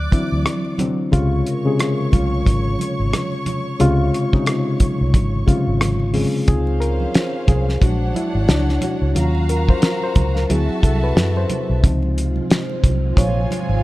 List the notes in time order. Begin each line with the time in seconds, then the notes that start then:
Already playing: D5 D6 F#6
0.11 D3 E3 C4 E4, kick, closed hi-hat, high conga
0.19 F#3
0.32 D2
0.46 cross-stick, closed hi-hat, muted conga, high conga
0.65 muted conga
0.78 D3 F#3 C4 D4, closed hi-hat, high conga, low conga
1.12 C#2 C3 C#3 G#3 F4 C#5 C#6, kick, closed hi-hat, low conga
1.47 A#4, closed hi-hat
1.65 C3 C#3 G#3 G#4
1.80 cross-stick, closed hi-hat
1.98 muted conga
2.12 C2 G#3 C#4 F4, kick, closed hi-hat, high conga
2.46 G#1, kick, closed hi-hat, high conga
2.64 muted conga
2.79 closed hi-hat, high conga
3.00 G#1
3.13 cross-stick, closed hi-hat, muted conga, high conga
3.32 muted conga
3.46 closed hi-hat, high conga, low conga
3.79 C#2 C3 C#3 G#3 F4, closed hi-hat, low conga
4.14 F4, closed hi-hat
4.33 C3 C#3 G#3 D#4, kick
4.46 cross-stick, closed hi-hat
4.80 muted fingered electric bass stroke, kick, closed hi-hat, high conga, low conga
5.01 C2
5.14 G#1, kick, closed hi-hat, high conga
5.47 C3 C#3 G#3 F4, kick, closed hi-hat, high conga
5.67 G#1
5.81 cross-stick, closed hi-hat, high conga
6.00 muted conga
6.13 C#3 G#3 C4 G#4, open hi-hat, high conga, low conga
6.48 C#2 C4 C#4 D#4 F4 G#4 C5 F5, kick, closed hi-hat, muted conga, low conga
6.67 muted conga
6.80 A#4, closed hi-hat
7.00 high conga
7.14 C5, snare, closed hi-hat
7.47 C2 G#4, kick, closed hi-hat, high conga, low conga
7.69 snare
7.81 A#1 G#3 D4 F#4 C#5 F#5, kick, closed hi-hat, muted conga, high conga
8.14 E4, closed hi-hat, high conga
8.35 G#1
8.48 C#2 D4, snare, closed hi-hat, muted conga, high conga
8.67 snare, muted conga
8.81 F#4 C#5, closed hi-hat, high conga, low conga
9.02 C#2
9.15 D#2 F#3 C#4 F4 F#4 F5 A#5, closed hi-hat, muted conga, low conga
9.35 muted conga
9.49 A#4, closed hi-hat
9.68 C5, kick, high conga
9.82 A#4, snare, closed hi-hat
10.02 C5, muted conga
10.16 C#2, kick, closed hi-hat, high conga, low conga
10.36 A#4, snare
10.50 D2 F#3 C4 E4 F#4 G#4 E5 A5, closed hi-hat, muted conga, high conga
10.69 muted fingered electric bass stroke, muted conga
10.83 C2 A4, kick, closed hi-hat, high conga
11.04 B4
11.16 F#2, snare, closed hi-hat, high conga
11.36 C5, muted conga
11.50 closed hi-hat, high conga, low conga
11.70 B1
11.83 C#2 C3 F3 G#3 C4 D#4 F4, kick, closed hi-hat, muted conga, low conga
12.02 muted conga
12.18 closed hi-hat
12.36 high conga
12.50 C5, snare, closed hi-hat, muted conga
12.69 muted conga
12.84 C2, kick, closed hi-hat, high conga, low conga
13.16 A#1 F4 C#5 F5 G#5, kick, closed hi-hat, high conga
13.41 G#5
13.51 closed hi-hat, high conga
13.69 G#1